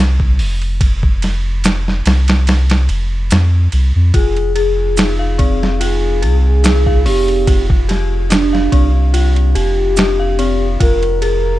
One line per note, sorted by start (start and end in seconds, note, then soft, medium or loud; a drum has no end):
0.00 0.41 C2 loud
0.20 kick medium
0.39 2.02 F1 medium
0.39 open hi-hat medium
0.62 ride soft
0.81 kick loud
0.81 ride medium
1.03 kick medium
1.22 snare soft
1.22 ride medium
1.64 snare loud
1.64 ride medium
1.64 maracas medium
1.88 snare soft
2.06 2.89 C2 loud
2.06 snare loud
2.06 ride medium
2.28 snare loud
2.28 ride medium
2.47 snare loud
2.47 ride medium
2.70 snare medium
2.70 ride medium
2.89 3.31 F1 medium
2.89 ride medium
3.31 3.68 F2 medium
3.31 snare loud
3.31 ride medium
3.31 maracas medium
3.72 3.92 C2 medium
3.72 ride medium
3.95 4.12 F2 medium
4.14 6.24 F1 medium
4.14 4.54 F4 medium
4.14 4.52 G#4 loud
4.14 kick loud
4.14 ride medium
4.37 ride soft
4.55 4.68 G#4 medium
4.55 5.14 G#4 loud
4.55 ride medium
4.97 5.17 D#4 medium
4.97 snare loud
4.97 ride medium
4.97 maracas medium
5.19 5.37 F5 medium
5.39 5.78 C4 loud
5.39 kick loud
5.39 ride medium
5.63 snare medium
5.80 6.20 F4 medium
5.80 6.39 G#4 loud
5.80 ride medium
6.22 7.07 C2 loud
6.22 6.35 G#4 medium
6.22 ride medium
6.47 7.01 G#4 loud
6.64 6.84 D#4 medium
6.64 snare loud
6.64 ride medium
6.64 maracas medium
6.86 7.04 F5 medium
6.86 kick medium
7.06 8.69 F1 medium
7.06 7.45 C4 loud
7.06 7.64 G4 loud
7.06 open hi-hat medium
7.28 ride soft
7.47 7.87 F4 medium
7.47 kick loud
7.47 ride medium
7.70 kick loud
7.89 8.02 G4 medium
7.89 snare soft
7.89 ride medium
8.30 8.51 D4 medium
8.30 8.89 D4 loud
8.30 snare loud
8.30 ride medium
8.30 maracas medium
8.53 8.70 F5 medium
8.53 snare soft
8.72 9.55 C2 medium
8.72 9.12 C4 loud
8.72 kick medium
8.72 ride medium
9.14 9.54 F4 medium
9.14 ride medium
9.36 ride soft
9.55 10.77 F1 medium
9.55 9.68 G4 medium
9.55 10.66 G4 loud
9.55 ride medium
9.97 10.17 D4 medium
9.97 snare loud
9.97 ride medium
9.97 maracas medium
10.19 10.37 F5 medium
10.39 10.79 C4 loud
10.39 ride medium
10.80 11.59 F1 loud
10.80 11.20 F4 medium
10.80 11.19 A#4 loud
10.80 kick loud
10.80 ride medium
11.03 ride soft
11.22 11.35 G#4 medium
11.22 11.59 A#4 loud
11.22 ride medium